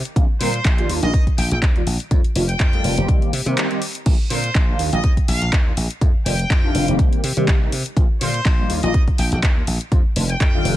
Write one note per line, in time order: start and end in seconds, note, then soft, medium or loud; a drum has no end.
0.05 closed hi-hat medium
0.16 0.26 A#1 loud
0.16 0.23 D3 medium
0.16 0.23 G3 medium
0.16 0.23 A#3 medium
0.16 0.23 C4 medium
0.16 0.24 F4 loud
0.16 kick loud
0.16 closed hi-hat medium
0.40 0.59 A#2 loud
0.40 0.48 D3 medium
0.40 0.48 G3 medium
0.40 0.48 A#3 medium
0.40 0.48 C4 medium
0.40 0.48 A#4 loud
0.40 0.89 C5 loud
0.40 open hi-hat loud
0.54 closed hi-hat medium
0.65 0.83 A#1 loud
0.65 kick loud
0.65 clap loud
0.65 closed hi-hat medium
0.78 0.99 D#3 medium
0.78 0.99 G3 medium
0.78 0.99 A#3 medium
0.78 0.99 D4 medium
0.78 0.99 F4 loud
0.78 closed hi-hat soft
0.89 0.99 D#2 medium
0.89 open hi-hat medium
1.02 1.10 A#1 loud
1.02 1.08 D#3 loud
1.02 1.09 G3 medium
1.02 1.09 A#3 medium
1.02 1.09 D4 medium
1.02 1.09 F4 loud
1.02 1.23 D#5 loud
1.02 closed hi-hat medium
1.14 1.23 D#2 loud
1.14 kick loud
1.14 closed hi-hat medium
1.27 muted slap bass stroke soft
1.27 kick medium
1.27 closed hi-hat soft
1.38 1.47 A#1 medium
1.38 1.46 G5 medium
1.38 open hi-hat loud
1.51 1.59 A#1 medium
1.51 1.58 G5 medium
1.51 closed hi-hat medium
1.62 1.80 D#2 medium
1.62 kick loud
1.62 clap loud
1.62 closed hi-hat medium
1.75 1.82 D#3 medium
1.75 1.82 G3 medium
1.75 1.82 A#3 medium
1.75 1.82 D4 medium
1.75 1.82 F4 medium
1.75 closed hi-hat soft
1.87 1.96 A#1 medium
1.87 open hi-hat medium
2.00 closed hi-hat medium
2.11 2.21 F2 loud
2.11 2.18 D#3 medium
2.11 2.18 G3 medium
2.11 2.18 A3 medium
2.11 2.19 D4 medium
2.11 2.19 F4 medium
2.11 kick loud
2.11 closed hi-hat medium
2.24 muted slap bass stroke soft
2.24 closed hi-hat soft
2.35 2.54 F1 loud
2.35 2.43 D#3 medium
2.35 2.43 G3 medium
2.35 2.43 A3 medium
2.35 2.43 D4 medium
2.35 2.43 F4 loud
2.35 open hi-hat loud
2.49 3.14 G5 loud
2.49 closed hi-hat medium
2.60 2.78 F2 loud
2.60 kick loud
2.60 clap loud
2.60 closed hi-hat medium
2.73 2.94 D#3 loud
2.73 2.94 G3 medium
2.73 2.94 A3 medium
2.73 2.94 D4 medium
2.73 2.95 F4 loud
2.73 closed hi-hat soft
2.84 2.94 F1 medium
2.84 open hi-hat medium
2.97 3.05 F1 loud
2.97 3.30 D#3 loud
2.97 3.30 G3 medium
2.97 3.30 A#3 medium
2.97 3.31 C4 loud
2.97 3.31 G4 loud
2.97 closed hi-hat medium
3.08 3.18 C2 loud
3.08 kick loud
3.08 closed hi-hat medium
3.22 closed hi-hat soft
3.33 3.43 C3 medium
3.33 open hi-hat loud
3.46 3.54 C3 loud
3.46 3.67 D#3 loud
3.46 3.67 G3 medium
3.46 3.68 A#3 medium
3.46 3.68 C4 medium
3.46 3.68 G4 loud
3.46 closed hi-hat medium
3.58 clap loud
3.58 closed hi-hat medium
3.70 3.80 D#3 medium
3.70 3.80 G3 medium
3.70 3.81 A#3 medium
3.70 3.81 C4 medium
3.70 3.81 G4 medium
3.70 closed hi-hat soft
3.82 open hi-hat medium
3.95 closed hi-hat medium
4.06 4.16 A#1 loud
4.06 4.13 D3 medium
4.06 4.13 G3 medium
4.06 4.13 A#3 medium
4.06 4.14 C4 medium
4.06 4.14 F4 loud
4.06 kick loud
4.06 closed hi-hat medium
4.06 crash loud
4.30 4.49 A#2 loud
4.30 4.38 D3 medium
4.30 4.38 G3 medium
4.30 4.38 A#3 medium
4.30 4.38 C4 medium
4.30 4.38 A#4 loud
4.30 4.80 C5 medium
4.30 open hi-hat loud
4.44 closed hi-hat medium
4.55 4.73 A#1 loud
4.55 kick loud
4.55 clap loud
4.55 closed hi-hat medium
4.68 4.89 D#3 medium
4.68 4.90 G3 medium
4.68 4.90 A#3 medium
4.68 4.90 D4 medium
4.68 4.90 F4 loud
4.79 4.89 D#2 medium
4.79 open hi-hat medium
4.92 5.01 A#1 loud
4.92 4.99 D#3 loud
4.92 4.99 G3 medium
4.92 4.99 A#3 medium
4.92 4.99 D4 medium
4.92 4.99 F4 loud
4.92 5.13 D#5 loud
4.92 closed hi-hat medium
5.04 5.13 D#2 medium
5.04 kick loud
5.04 closed hi-hat medium
5.17 muted slap bass stroke soft
5.17 kick medium
5.17 closed hi-hat soft
5.28 5.38 A#1 loud
5.28 5.50 F5 medium
5.28 open hi-hat loud
5.42 5.50 A#1 medium
5.42 closed hi-hat medium
5.53 5.71 D#2 medium
5.53 kick loud
5.53 clap loud
5.53 closed hi-hat medium
5.66 5.72 D#3 medium
5.66 5.72 G3 medium
5.66 5.72 A#3 medium
5.66 5.72 D4 medium
5.66 5.72 F4 medium
5.77 5.87 A#1 medium
5.77 open hi-hat loud
5.91 closed hi-hat medium
6.01 6.11 F2 medium
6.01 6.09 D#3 medium
6.01 6.09 G3 medium
6.01 6.09 A3 medium
6.01 6.09 D4 medium
6.01 6.09 F4 medium
6.01 kick loud
6.01 closed hi-hat medium
6.15 muted slap bass stroke soft
6.25 6.44 F1 loud
6.25 6.33 D#3 medium
6.25 6.33 G3 medium
6.25 6.33 A3 medium
6.25 6.33 D4 medium
6.25 6.33 F4 loud
6.25 6.95 G5 loud
6.25 open hi-hat loud
6.39 closed hi-hat medium
6.50 6.68 F2 loud
6.50 kick loud
6.50 clap loud
6.50 closed hi-hat medium
6.63 6.84 D#3 loud
6.63 6.85 G3 loud
6.63 6.85 A3 loud
6.63 6.85 D4 loud
6.63 6.85 F4 loud
6.75 6.84 F1 medium
6.75 open hi-hat loud
6.87 6.96 F1 loud
6.87 7.20 D#3 loud
6.87 7.20 G3 loud
6.87 7.21 A#3 loud
6.87 7.21 C4 medium
6.87 7.21 G4 loud
6.87 closed hi-hat medium
6.99 7.09 C2 medium
6.99 kick loud
6.99 closed hi-hat medium
7.12 muted slap bass stroke soft
7.12 closed hi-hat soft
7.24 7.33 C3 medium
7.24 open hi-hat loud
7.36 7.45 C3 medium
7.36 7.58 D#3 medium
7.36 7.58 G3 medium
7.36 7.58 A#3 medium
7.36 7.58 C4 medium
7.36 7.58 G4 loud
7.36 closed hi-hat medium
7.48 7.66 C2 medium
7.48 kick loud
7.48 clap loud
7.48 closed hi-hat medium
7.61 7.71 D#3 medium
7.61 7.71 G3 medium
7.61 7.71 A#3 medium
7.61 7.71 C4 medium
7.61 7.71 G4 medium
7.72 7.82 C3 medium
7.72 open hi-hat medium
7.86 closed hi-hat medium
7.96 8.06 A#1 loud
7.96 8.04 D3 medium
7.96 8.04 G3 medium
7.96 8.04 A#3 medium
7.96 8.04 C4 medium
7.96 8.04 F4 loud
7.96 kick loud
7.96 closed hi-hat medium
8.20 8.39 A#2 loud
8.20 8.28 D3 medium
8.20 8.28 G3 medium
8.20 8.28 A#3 medium
8.20 8.28 C4 medium
8.20 8.28 A#4 loud
8.20 8.70 C5 loud
8.20 open hi-hat loud
8.34 closed hi-hat medium
8.45 8.64 A#1 loud
8.45 kick loud
8.45 clap loud
8.45 closed hi-hat medium
8.58 8.80 D#3 medium
8.58 8.80 G3 medium
8.58 8.80 A#3 medium
8.58 8.80 D4 medium
8.58 8.80 F4 loud
8.70 8.79 D#2 medium
8.70 open hi-hat medium
8.83 8.91 A#1 loud
8.83 8.89 D#3 medium
8.83 8.89 G3 medium
8.83 8.89 A#3 medium
8.83 8.89 D4 medium
8.83 8.89 F4 loud
8.83 9.04 D#5 loud
8.83 closed hi-hat medium
8.94 9.04 D#2 medium
8.94 kick loud
8.94 closed hi-hat medium
9.08 muted slap bass stroke soft
9.08 kick medium
9.08 closed hi-hat soft
9.18 9.28 A#1 medium
9.18 9.27 G5 medium
9.18 open hi-hat loud
9.32 9.40 A#1 medium
9.32 9.39 G5 medium
9.32 closed hi-hat medium
9.43 9.61 D#2 medium
9.43 kick loud
9.43 clap loud
9.43 closed hi-hat medium
9.56 9.62 D#3 medium
9.56 9.62 G3 medium
9.56 9.62 A#3 medium
9.56 9.62 D4 medium
9.56 9.63 F4 medium
9.67 9.77 A#1 medium
9.67 open hi-hat loud
9.81 closed hi-hat medium
9.91 10.01 F2 loud
9.91 9.99 D#3 medium
9.91 9.99 G3 medium
9.91 9.99 A3 medium
9.91 9.99 D4 medium
9.91 9.99 F4 medium
9.91 kick loud
9.91 closed hi-hat medium
10.05 muted slap bass stroke soft
10.16 10.34 F1 loud
10.16 10.23 D#3 medium
10.16 10.23 G3 medium
10.16 10.23 A3 medium
10.16 10.23 D4 medium
10.16 10.24 F4 loud
10.16 open hi-hat loud
10.30 10.77 G5 loud
10.30 closed hi-hat medium
10.40 10.59 F2 medium
10.40 kick loud
10.40 clap loud
10.40 closed hi-hat medium
10.53 10.75 D#3 loud
10.53 10.75 G3 medium
10.53 10.75 A3 medium
10.53 10.75 D4 loud
10.53 10.75 F4 loud
10.65 10.74 F1 medium
10.65 open hi-hat loud